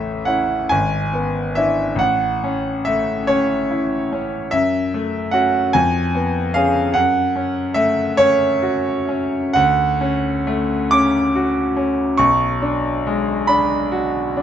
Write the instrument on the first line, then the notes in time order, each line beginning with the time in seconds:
grand piano
Already playing: A1 A3 E5
0.25 C#4 E4 F#5
0.69 G#1 G#5
1.14 B3
1.55 D4 E4 E5
1.96 A1 F#5
2.44 C#4
2.85 A3 E5
3.27 C#4 C#5
3.71 E4
4.12 C#4
4.51 F#2 E5
4.94 A3
5.31 C#4 F#4 F#5
5.73 F2 G#5
6.15 B3
6.54 C#4 G#4 F5
6.94 F#2 F#5
7.36 C#4
7.74 A3 E5
8.17 C#4 C#5
8.62 F#4
9.09 C#4
9.53 D2 F#5
10.01 C#4
10.47 A3
10.91 C#4 D6
11.35 F#4
11.77 C#4
12.17 B1 C#6
12.62 D4
13.07 G#3
13.47 D4 B5
13.92 F#4
14.37 D4